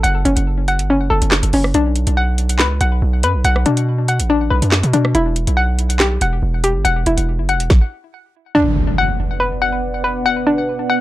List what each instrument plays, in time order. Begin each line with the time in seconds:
Already playing: synth pluck A4
0.03 808-style bass F#1, synth pluck F#5, closed hi-hat
0.25 808-style bass F#1, synth pluck C#4, closed hi-hat
0.37 808-style bass F#1, closed hi-hat
0.68 synth pluck F#5, closed hi-hat
0.79 808-style bass G1, closed hi-hat
0.90 synth pluck C#4
0.95 808-style bass F#1
1.10 808-style bass F#1, synth pluck A4
1.22 808-style bass F#1, closed hi-hat
1.31 snare, clap
1.43 808-style bass F#1, closed hi-hat
1.53 808-style bass F#1, synth pluck C#4, open hi-hat
1.64 cross-stick
1.74 808-style bass B1, synth pluck D4, closed hi-hat
1.96 closed hi-hat
2.07 808-style bass B1, closed hi-hat
2.17 synth pluck F#5
2.38 closed hi-hat
2.49 closed hi-hat
2.59 808-style bass C#2, synth pluck B4, snare, clap
2.81 808-style bass B1, synth pluck F#5, closed hi-hat
3.02 808-style bass B1
3.23 808-style bass F#2, synth pluck B4, closed hi-hat
3.34 808-style bass B1
3.44 808-style bass B1, synth pluck F#5, closed hi-hat
3.56 cross-stick
3.66 808-style bass B2, synth pluck D4, closed hi-hat
3.77 closed hi-hat
4.08 synth pluck F#5, closed hi-hat
4.20 808-style bass A1, closed hi-hat
4.30 synth pluck D4
4.50 808-style bass B1, synth pluck B4
4.62 808-style bass F#2, closed hi-hat
4.72 snare, clap
4.83 808-style bass B2, closed hi-hat
4.93 808-style bass B2, synth pluck D4, closed hi-hat
5.05 cross-stick
5.15 808-style bass E1, synth pluck E4, closed hi-hat
5.36 closed hi-hat
5.47 808-style bass B1, closed hi-hat
5.57 synth pluck F#5
5.79 closed hi-hat
5.90 closed hi-hat
6.00 synth pluck G4, snare, clap
6.21 808-style bass E1, synth pluck F#5, closed hi-hat
6.42 808-style bass E1
6.64 synth pluck G4, closed hi-hat
6.75 808-style bass G1
6.85 808-style bass E1, synth pluck F#5, closed hi-hat
7.06 808-style bass E1, synth pluck E4, closed hi-hat
7.18 808-style bass E1, closed hi-hat
7.39 808-style bass F#1
7.49 synth pluck F#5, closed hi-hat
7.54 808-style bass E1
7.60 closed hi-hat
7.70 kick, snare
8.55 analog synth pad B3 B4 D5 F#5, synth pluck D4, impact
8.98 synth pluck F#5
9.40 synth pluck B4
9.62 synth pluck F#5
10.04 synth pluck B4
10.26 synth pluck F#5
10.47 synth pluck D4
10.90 synth pluck F#5